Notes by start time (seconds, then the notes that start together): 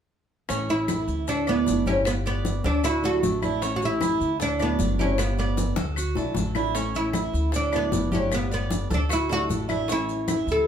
0.49 A1 E3 A3 C#4 E4, high bongo, high conga, maracas
0.69 E4, high bongo, high conga, maracas
0.88 E4, high bongo, high conga, claves, maracas
1.08 D2, high bongo, high conga, maracas
1.28 D4 A4, muted nylon-string guitar stroke, high bongo, high conga, maracas
1.47 A3 B3 D4 E4 D5, high bongo, high conga, claves, maracas
1.51 F#3
1.66 G1 F#3 A3 D4 E4, high bongo, low bongo, high conga, maracas
1.86 F#3 A3 C#4 D4 E4 G4, high conga, maracas
2.05 G3 B3 F4, high bongo, claves, maracas
2.25 B3 D5, high bongo, high conga, maracas
2.45 high bongo, high conga, maracas
2.64 D2 D4 A4, high bongo, high conga, maracas
2.84 E4 F#4, muted nylon-string guitar stroke, high bongo, high conga, claves, maracas
3.03 F#3 A3 D4 E4 F#4 A4, high bongo, high conga, maracas
3.22 A1 F#3 A3 D4 E4, high bongo, low bongo, high conga, maracas
3.42 F#3 A3 D4 E4, high conga, claves, maracas
3.61 E3 A3 C#4 E4, high bongo, high conga, maracas
3.76 F#4
3.82 E4, high bongo, high conga, maracas
4.01 E4, high bongo, high conga, claves, maracas
4.20 D2, high bongo, high conga, maracas
4.40 D4 A4, muted nylon-string guitar stroke, high bongo, high conga, maracas
4.59 F#3 A3 B3 D4 E4 D5, high bongo, high conga, claves, maracas
4.79 G1 F#3 A3 D4 E4, high bongo, low bongo, high conga, maracas
4.99 F#3 A3 C#4 D4 E4 G4, high conga, maracas
5.18 G3 B3 F4, high bongo, high conga, claves, maracas
5.38 B3 D5, high bongo, high conga, maracas
5.57 high bongo, high conga, maracas
5.76 D2 A4, high bongo, high conga, maracas
5.96 F#4, muted nylon-string guitar stroke, high conga, claves, maracas
6.15 B1 F#3 A3 D4 E4 A4, low bongo, high conga, maracas
6.35 A1 F#3 A3 D4 E4, low bongo, high conga, maracas
6.55 F#3 A3 D4 E4, low bongo, claves, maracas
6.74 E3 A3 C#4 E4, high bongo, high conga, maracas
6.94 E4, high bongo, high conga, maracas
7.13 E4, high bongo, high conga, claves, maracas
7.33 D2, high bongo, high conga, maracas
7.52 D4 A4, muted nylon-string guitar stroke, high bongo, high conga, maracas
7.72 F#3 A3 D4 E4 D5, high bongo, high conga, claves, maracas
7.76 B3
7.92 G1 F#3 A3 D4 E4, high bongo, low bongo, high conga, maracas
8.12 F#3 A3 C#4 D4 E4 G4, high conga, maracas
8.31 G3 B3 F4, high bongo, high conga, claves, maracas
8.52 B3 D5, high bongo, high conga, maracas
8.71 high bongo, high conga, maracas
8.90 D2 D4 A4, high bongo, high conga, maracas
9.09 E4 F#4, muted nylon-string guitar stroke, high bongo, high conga, claves, maracas
9.29 F#3 A3 D4 E4 F#4 A4, high bongo, high conga, maracas
9.48 A1 F#3 A3 D4 E4, high bongo, low bongo, high conga, maracas
9.68 F#3 A3 D4 E4, high conga, claves, maracas
9.88 E3 A3 C#4 E4, high bongo, high conga, maracas
9.92 E4
10.09 high bongo, high conga, maracas
10.28 E4, high bongo, high conga, claves, maracas
10.47 D2, high bongo, high conga, maracas
10.52 A4